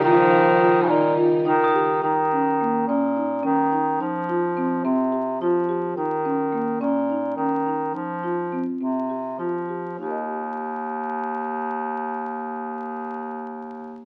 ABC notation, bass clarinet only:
X:1
M:7/8
L:1/8
Q:1/4=105
K:Ebmix
V:1 name="Bass clarinet" clef=bass
E,3 B,, z E,2 | E,3 B,,2 E,2 | F,3 C,2 F,2 | E,3 B,,2 E,2 |
F,3 C,2 F,2 | E,,6- E,,- | E,,6- E,, |]